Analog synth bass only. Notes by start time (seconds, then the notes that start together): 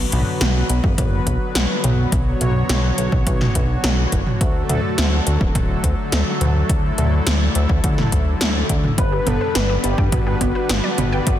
0.12 B1
0.41 B1
0.70 B1
0.84 F#1
0.98 F#1
1.27 B1
1.55 B1
1.84 B1
2.12 B1
2.41 B1
2.69 B1
2.98 B1
3.12 B1
3.27 B1
3.55 B1
3.84 B1
4.12 F#1
4.41 D2
4.69 D2
4.98 D2
5.27 D2
5.41 D1
5.55 D1
5.84 D2
6.12 D2
6.41 D2
6.69 D2
6.98 D2
7.27 D2
7.55 D2
7.69 D2
7.84 D2
8.12 D2
8.41 D2
8.69 D2
8.98 G1
9.27 G1
9.55 G1
9.84 G1
9.98 G2
10.12 G2
10.41 G1
10.70 G1
10.98 G1
11.27 G1